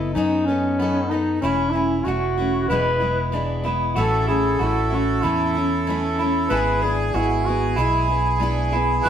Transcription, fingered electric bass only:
0.00 0.13 F#1 medium
0.16 1.39 F#2 loud
1.43 2.03 E1 medium
2.06 2.67 E1 medium
2.70 3.93 E1 loud
3.96 4.57 A1 medium
4.60 5.21 A1 medium
5.25 6.47 E2 loud
6.51 7.11 G#1 medium
7.14 7.74 G#1 medium
7.77 9.00 B1 loud
9.05 9.09 F#1 medium

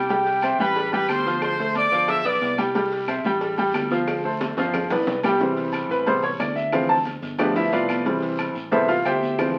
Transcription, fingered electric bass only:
0.00 0.53 C2 medium
0.59 1.05 A1 loud
1.08 1.86 D2 medium
1.92 2.23 G1 medium
2.25 2.40 B1 medium
2.42 3.19 C2 loud
3.24 3.71 A1 medium
3.74 4.51 D2 medium
4.57 4.88 G1 medium
4.90 5.06 B1 medium
5.07 5.84 C2 loud
5.89 6.36 A1 loud
6.40 7.17 D2 medium
7.22 7.69 G1 loud
7.72 8.50 C2 loud
8.55 9.02 A1 medium
9.06 9.59 D2 medium

